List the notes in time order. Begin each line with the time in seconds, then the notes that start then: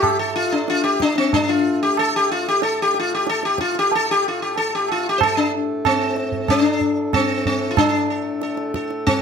Already playing: A2 A3 G4
0.03 tabla na, tabla ge
0.19 A4
0.36 F4
0.52 D4
0.68 F4, tabla te
0.84 G4, tabla te
1.00 D4, tabla ke
1.16 C4, tabla te
1.33 D4, tabla tin, tabla ge
1.49 F4
1.83 G4
1.97 A4, tabla na
2.16 G4
2.32 F4
2.48 G4
2.62 A4, tabla te
2.82 G4
2.94 tabla te
3.00 F4
3.15 G4
3.27 A4, tabla te
3.43 G4, tabla te
3.58 F4, tabla ke
3.75 G4, tabla te
3.92 A4, tabla tin
4.11 G4
4.28 F4
4.42 G4
4.56 A4, tabla tin
4.75 G4
4.88 F4, tabla na
5.09 G4
5.18 C5, tabla na, tabla ge
5.23 A4
5.37 D4
5.85 C4 A4, tabla na, tabla ge
6.16 tabla te
6.32 tabla ge
6.48 D4 A4, tabla na, tabla ge
6.81 tabla ge
7.13 C4 A4, tabla na, tabla ge
7.46 C4, tabla ge
7.71 F4
7.77 A2 A3 D4, tabla na, tabla ge
8.10 A4
8.41 A4, tabla te
8.57 tabla te
8.74 A4, tabla ke
8.90 tabla te
9.07 C4, tabla tin, tabla ge